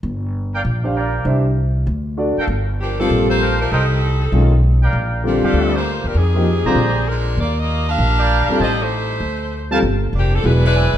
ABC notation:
X:1
M:4/4
L:1/8
Q:"Swing" 1/4=196
K:Gdor
V:1 name="Trumpet section"
z3 [Bdfg] z2 [Bdfg]2 | z6 z [ABfg] | [K:Gm] z6 [ABfg]2 | [Bceg] z6 [Bdfg]- |
[Bdfg]2 z [Gdfg]3 z2 | z3 [cdgb]3 z2 | z4 z [Bdfg]3 | [cega] z6 [Bfga] |
z6 [Cd=e^g]2 |]
V:2 name="Saxophone section"
z8 | z8 | [K:Gm] z2 [F,B,DG] [F,B,DA]2 [B,FAc]2 [F,A,DB] | [G,CEA]6 z2 |
z2 [F,B,DG] [G,DFA]2 [B,FGc]2 [G,DFB] | [E,CG_A]6 [_A,DFB]2 | [B,FGd] [B,FGe]2 [DGBf]4- [DGBf] | [CGAe] [A,EGc]6 z |
z2 [F,B,DG] [F,B,DA] [^G,D=E=B] [G,DEB]3 |]
V:3 name="Grand piano"
z4 z [DGcf] z2 | [DGce] z4 z [D^FAd] z | [K:Gm] z3 [G,CFA]3 z2 | z4 [^D,_A,^CF] z3 |
z2 [D,G,CF]3 z3 | z [F,B,EG] z [D,G,CF] z4 | z6 z [G,CFA] | z6 z [G,CFA] |
z4 [^F,=B,=E^G] z3 |]
V:4 name="Upright bass" clef=bass
G,,,4 B,,,4 | C,,4 D,,3 z | [K:Gm] G,,,4 B,,,4 | C,,4 =B,,,4 |
B,,,3 F,, D,,3 =E,, | F,,3 A,,, B,,,4 | E,,4 B,,,3 z | A,,,4 D,,4 |
G,,,2 F,,,2 =E,,,3 ^F,,, |]